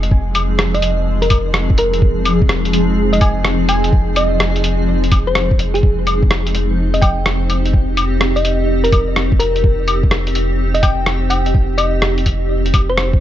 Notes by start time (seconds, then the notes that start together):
Already playing: F1 F3 G#3 C4 D#4 G#4
0.03 closed hi-hat
0.11 kick
0.35 closed hi-hat, claves
0.59 cross-stick
0.75 D#5, closed hi-hat
0.82 closed hi-hat
1.22 A#4, closed hi-hat
1.30 kick, closed hi-hat, claves
1.54 cross-stick
1.70 kick
1.78 A#4, closed hi-hat
1.93 closed hi-hat
2.02 kick
2.25 closed hi-hat, claves
2.42 kick
2.49 cross-stick
2.65 closed hi-hat
2.73 closed hi-hat
3.13 D#5, closed hi-hat
3.21 G#5, kick, closed hi-hat, claves
3.45 cross-stick
3.69 G#5, closed hi-hat, claves
3.84 closed hi-hat
3.93 kick
4.16 D#5, closed hi-hat, claves
4.40 cross-stick
4.56 closed hi-hat
4.64 closed hi-hat
5.04 closed hi-hat
5.12 kick, closed hi-hat, claves
5.27 C5
5.35 cross-stick
5.51 kick
5.59 closed hi-hat
5.74 G#4, closed hi-hat
5.82 F1 C4 G4, kick
6.07 closed hi-hat, claves
6.23 kick
6.31 cross-stick
6.47 closed hi-hat
6.55 closed hi-hat
6.94 D#5, closed hi-hat
7.02 G5, kick, closed hi-hat, claves
7.26 cross-stick
7.50 closed hi-hat, claves
7.66 closed hi-hat
7.74 kick
7.97 closed hi-hat, claves
8.21 cross-stick
8.36 D#5, closed hi-hat
8.45 closed hi-hat
8.84 A#4, closed hi-hat
8.92 kick, closed hi-hat, claves
9.16 cross-stick
9.32 kick
9.40 A#4, closed hi-hat
9.56 closed hi-hat
9.64 kick
9.88 closed hi-hat, claves
10.03 kick
10.11 cross-stick
10.27 closed hi-hat
10.35 closed hi-hat
10.74 D#5, closed hi-hat
10.83 G5, kick, closed hi-hat, claves
11.06 cross-stick
11.30 G5, closed hi-hat, claves
11.46 closed hi-hat
11.54 kick
11.78 D#5, closed hi-hat, claves
12.02 cross-stick
12.18 closed hi-hat
12.26 kick, closed hi-hat
12.66 closed hi-hat
12.74 kick, closed hi-hat, claves
12.90 C5
12.98 cross-stick
13.13 kick